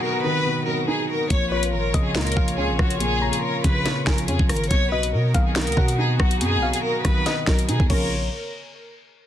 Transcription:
Already playing: B2 D#3 F#3 B3 D#4 F#4
0.03 A#4
0.24 D#3 B4
0.45 B2
0.66 F#3 A#4
0.88 D#4 G#4
1.09 A#4
1.30 A#1 A#2 F4 C#5, kick, closed hi-hat
1.51 F3 B4 C#5
1.63 closed hi-hat
1.73 G#1 A#4
1.94 A#1 C#3 D#5, kick, closed hi-hat
2.05 G#4
2.15 C#2 A#2 A#4, finger snap, snare, closed hi-hat
2.21 closed hi-hat
2.27 closed hi-hat
2.32 closed hi-hat
2.37 A#1 F3 F5, kick
2.48 closed hi-hat
2.58 C#2 C#4 G#4
2.69 A#1
2.79 A#1 F#4, kick, cross-stick
2.90 closed hi-hat
3.00 A#2 G#4, closed hi-hat
3.22 F3 A#5
3.33 G#4, closed hi-hat
3.43 A#4
3.64 A#1 C#3 B4, kick, closed hi-hat
3.86 A#2, snare, closed hi-hat
4.06 A#1 F3 A#4 G#5, finger snap, kick, snare
4.18 closed hi-hat
4.28 F2 C#4 G#4, closed hi-hat
4.39 A#1, kick
4.49 G#1 A#4, cross-stick, closed hi-hat, open hi-hat
4.57 closed hi-hat
4.64 closed hi-hat
4.71 B1 B2 B3 D#4 F#4 C#5, kick, closed hi-hat
4.92 F#3 B4 D#5
5.03 closed hi-hat
5.13 B2 A#4
5.34 B1 D#3 F5, kick, closed hi-hat
5.46 G#4
5.55 B2 A#4, finger snap, snare, closed hi-hat
5.61 closed hi-hat
5.67 C#2, closed hi-hat
5.72 closed hi-hat
5.77 B2 F#3 F#5, kick
5.88 closed hi-hat
5.98 D#4 G#4
6.20 B1 F#4, kick, cross-stick
6.31 closed hi-hat
6.41 F#2 B2 G#4, closed hi-hat
6.57 B1
6.62 F#3 F5
6.73 G#4, closed hi-hat
6.83 A#4
7.05 B1 D#3 B4, kick, cross-stick, closed hi-hat
7.26 B2 D#5, snare, closed hi-hat
7.46 B1 F#3 A#4, finger snap, kick, snare
7.59 closed hi-hat
7.69 B2 D#4 G#4, closed hi-hat
7.80 D#2, kick
7.90 A#1 C#3 F3 A#3 C#4 F4 A#4 C#5, kick, crash

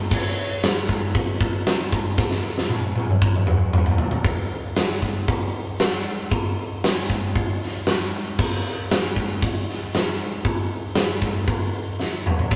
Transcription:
0.11 kick, crash
0.63 snare, open hi-hat
0.89 kick
1.15 kick, open hi-hat
1.41 kick
1.67 snare, open hi-hat
1.92 kick
2.18 kick, snare
2.31 snare
2.58 snare
2.69 high tom
2.96 high tom
3.10 mid tom
3.22 kick
3.36 mid tom
3.47 mid tom
3.73 mid tom
3.86 floor tom
3.98 floor tom
4.11 floor tom
4.24 kick, open hi-hat
4.76 snare, open hi-hat
5.02 kick
5.28 kick, open hi-hat
5.80 snare, open hi-hat
6.31 kick, open hi-hat
6.84 snare, open hi-hat
7.10 kick
7.36 kick, open hi-hat
7.63 snare
7.87 snare, open hi-hat
8.39 kick, crash
8.91 snare, open hi-hat
9.16 kick
9.42 kick, open hi-hat
9.69 snare
9.94 snare, open hi-hat
10.45 kick, open hi-hat
10.95 snare, open hi-hat
11.22 kick
11.47 kick, open hi-hat
12.00 snare
12.26 mid tom
12.39 floor tom
12.51 kick, crash, splash

